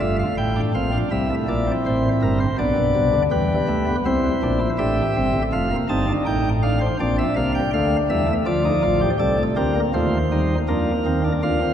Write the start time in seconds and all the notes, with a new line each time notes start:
Already playing: A3
0.00 G1 G2 F4 E5
0.19 F5
0.38 A1 A2 E4 G5
0.56 D4
0.74 A#1 A#2 C4 F5
0.92 D4
1.11 C2 C3 G3 E4 E5
1.30 A3
1.48 A#1 A#2 A#3 D5
1.67 C4
1.86 A1 A2 C5
2.22 G1 G2 A#4
2.40 C5
2.59 B1 B2 B3 D4 D5
2.77 B1 B2
2.95 C2 C3
3.13 D2 D3
3.31 E2 E3 G3 G4 B4
3.68 D2 D3 A3
3.87 B3
4.06 C2 C3 C4 E4 C5
4.43 A#1 A#2 D4
4.60 E4
4.78 A1 A2 D4 G4 E5
5.16 G1 G2 C4
5.34 A1 A2
5.52 F1 F2 A3 F4 F5
5.71 A#3
5.89 G1 G2 C4 D#4 A5
6.08 D4
6.26 A1 A2 D#4 G5
6.63 D4 F5
6.81 C5
7.00 A#1 A#2 C4 D4 D5
7.18 E5
7.36 C2 C3 A#3 F5
7.55 G5
7.73 D2 D3 A3 F5
8.10 E2 E3 G3 E5
8.28 A3
8.46 D2 D3 F3 F4 D5
8.65 D#4
8.83 A1 A2 F4
9.01 G4
9.19 C2 C3 G3 A4 D5
9.38 A3
9.56 D2 D3 C4 G4 A#4
9.76 A#3
9.94 D#2 D#3 A3 F4 C5
10.32 G3 D#4
10.68 F2 F3 A#3 D4 A#4
11.05 D#2 D#3 C4
11.24 D4
11.43 D2 D3 D4 F4 F5
11.61 C4